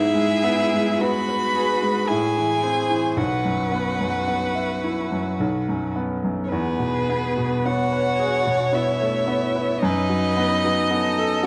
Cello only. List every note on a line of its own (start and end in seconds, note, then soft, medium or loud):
0.00 1.02 E4 medium
1.00 2.09 B4 medium
2.07 3.18 G#4 medium
3.16 5.95 F#4 medium
6.50 7.69 B3 medium
7.67 8.78 F#4 medium
8.76 9.82 E4 medium
9.83 11.45 D#4 medium
11.43 11.46 C#4 medium